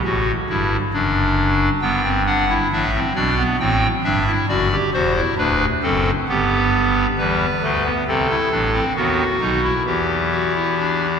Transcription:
0.04 A1 A2 F#4
0.49 G1 G2 E4
0.93 F#1 F#2 D4
1.81 G1 G2 B3 G5
2.03 C4
2.26 D4 F#5
2.49 E4
2.72 A1 A2 D4 E5
2.94 C4
3.15 B1 B2 D4 D5
3.38 B3
3.60 A1 A2 C4 G5
4.04 G1 G2 D4 E5
4.27 E4
4.48 F#1 F#2 F#4 D5
4.72 G4
4.93 E1 E2 F#4 C5
5.16 E4
5.38 D1 D2 D4 B4
5.83 F#1 F#2 C4 A4
6.29 G1 G2 B3 G4
7.18 E2 E3 G3 B4
7.63 D2 D3 A3
7.85 B3
8.08 C2 C3 C4 A4
8.30 E4
8.51 A1 A2 D4
8.73 C4
8.95 D#2 D#3 B3 F#4
9.40 B1 B2 D#4
9.63 E4
9.86 E2 E3 G4
10.32 F#4
10.55 E4
10.78 D4

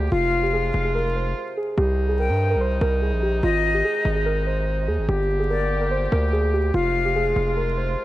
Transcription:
Already playing: D3 G3 A#3 G4
0.12 F1 C3 F3 G#3 F4 F5
0.43 G4
0.53 G#4
0.74 F1
0.85 G#4
0.95 A#4
1.16 C5
1.57 G#4
1.77 C2 D#3 G3 D#4 G4
2.09 G#4
2.19 A#4 G5
2.29 G2
2.51 A#4
2.55 C2
2.61 C5
2.81 C2 A#4
3.02 G#4
3.12 A#1
3.23 G4
3.43 G#1 G#3 F4 D#5
3.74 G4
3.85 G#4
4.05 G#1
4.16 G#4
4.26 A#4
4.47 C5
4.88 D#2 G#4
4.98 G#1
5.08 G1 D3 G3 A#3 G4
5.40 G#4
5.50 A#4 D5
5.81 A#4
5.91 C5
6.12 D2 A#4
6.33 G#4
6.54 G4
6.74 F1 C3 F3 G#3 F4 F5
7.05 G4
7.16 G#4
7.36 F1
7.47 G#4
7.57 A#4
7.77 C5

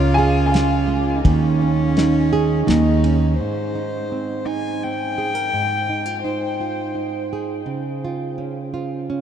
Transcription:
Already playing: C#2 C#3 C#4 F4 A#4 C#5
0.14 G#4 G#5
0.18 F5
0.46 G#5
0.51 F4 F5, snare, ride
0.87 G#3
1.16 D#4
1.24 D#2 D#3 C#4, kick, ride
1.62 C#4
1.97 D#4, snare, ride
2.33 G#4
2.67 D#2 D#3 D#4, snare, ride
3.04 C#4, ride
3.39 G#2 C5
3.75 D#4
4.12 C4
4.46 D#4 G#5
4.83 C4 G5
5.18 G#4
5.35 A#4
5.53 G#2
5.89 D#4
6.06 F4
6.24 D#4 C5
6.60 F4
6.95 D#4
7.33 G#4
7.66 C#3
8.05 F4
8.38 C#4
8.74 F4
9.10 C#4

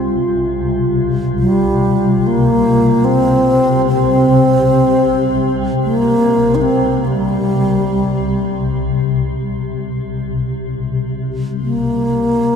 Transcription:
Already playing: C2 C3 F4
1.39 G3
2.27 A#3
3.04 C4
3.86 C4
5.83 A#3
6.55 D#4
6.62 C4
7.05 G3 A#3
10.15 C2 C3
11.62 A#3

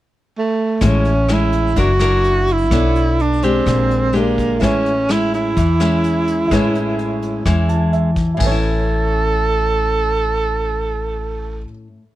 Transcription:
0.38 A3
0.81 A1 A2 G#3 C#4 E4, kick, cross-stick, closed hi-hat
0.85 C#4
1.05 closed hi-hat
1.29 G#3 C#4 E4, cross-stick, closed hi-hat
1.33 E4
1.53 closed hi-hat
1.76 F#1 F#3 D4 E4 F#4 A#4, kick, closed hi-hat
2.00 D4 E4 A#4, cross-stick, closed hi-hat
2.24 closed hi-hat
2.48 closed hi-hat
2.52 E4
2.71 B1 B3 D4 A4 C#5, kick, cross-stick, closed hi-hat
2.95 closed hi-hat
3.19 D4, closed hi-hat
3.43 G#3 C4 D4 G4, closed hi-hat
3.66 A#1 A#2, kick, cross-stick, closed hi-hat
3.91 closed hi-hat
4.13 G#3 D4 G4, closed hi-hat
4.17 A#3
4.38 kick, closed hi-hat
4.59 A1 A2 G#3 C#4 E4 G#4, kick, cross-stick, closed hi-hat
4.63 C#4 B4 C#5
4.86 closed hi-hat
5.09 G#3 C#4 E4, cross-stick, closed hi-hat
5.34 E4, closed hi-hat
5.56 E2 E3, kick, closed hi-hat
5.80 G#3 C#4 E4, cross-stick, closed hi-hat
6.04 closed hi-hat
6.28 closed hi-hat
6.48 A1 A2 G#3 C#4 E4 G#4, kick
6.52 E4 B4 C#5, cross-stick, closed hi-hat
6.75 closed hi-hat
6.99 closed hi-hat
7.22 closed hi-hat
7.46 E2 E3 G#3 C#4 E4, kick, cross-stick, closed hi-hat
7.69 A5, closed hi-hat
7.93 E5, closed hi-hat
8.16 kick, closed hi-hat
8.34 A2 E4
8.39 A1 A4 B4 G#5, kick, crash
8.46 C#4 C#5
8.51 E4

